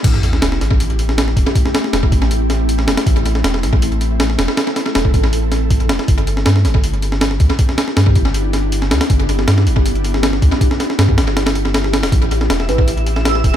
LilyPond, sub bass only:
\new Staff \with { instrumentName = "Sub bass" } { \clef bass \time 4/4 \key a \minor \tempo 4 = 159 a,,4 e,,8 a,,2 e,,16 r16 | r4 e,,8 a,,2 e,,16 r16 | a,,4 e,,8 a,,2 e,,16 r16 | r4 e,,8 a,,2 e,,16 r16 |
g,,4 g,8 g,,2 d,16 r16 | r4 g,8 g,,2 d,16 r16 | g,,4 g,8 g,,2 d,16 r16 | r4 g,8 g,,2~ g,,16 d,,16 |
a,,4 e,,8 a,,2 e,,16 r16 | }